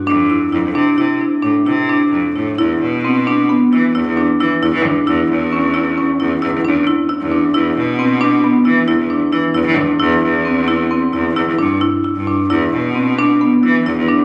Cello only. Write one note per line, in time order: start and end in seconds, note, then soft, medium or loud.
0.07 0.47 F2 medium
0.53 0.62 F2 medium
0.64 0.74 F2 medium
0.75 0.95 C3 medium
0.98 1.17 C3 medium
1.43 1.53 A2 medium
1.66 2.06 C3 medium
2.12 2.32 F2 medium
2.35 2.55 A2 medium
2.58 2.78 E2 medium
2.81 3.61 B2 medium
3.73 3.92 E3 medium
3.95 4.05 E2 medium
4.07 4.26 E2 medium
4.40 4.50 E3 medium
4.62 4.72 E2 medium
4.74 4.87 E3 medium
4.85 4.95 E2 medium
5.07 5.27 E2 medium
5.30 6.09 E2 medium
6.20 6.40 E2 medium
6.42 6.52 E2 medium
6.53 6.63 E2 medium
6.64 6.84 E2 medium
7.21 7.50 E2 medium
7.54 7.74 E2 medium
7.77 8.55 B2 medium
8.66 8.85 E3 medium
8.88 8.98 E2 medium
8.99 9.19 E2 medium
9.32 9.42 E3 medium
9.55 9.65 E2 medium
9.66 9.79 E3 medium
9.77 9.87 E2 medium
10.00 10.20 E2 loud
10.23 11.02 E2 medium
11.13 11.33 E2 medium
11.35 11.45 E2 medium
11.47 11.57 E2 medium
11.59 11.79 G2 medium
12.16 12.46 G2 medium
12.50 12.70 E2 medium
12.73 13.53 B2 medium
13.63 13.83 E3 medium
13.86 13.96 E2 medium
13.97 14.17 E2 medium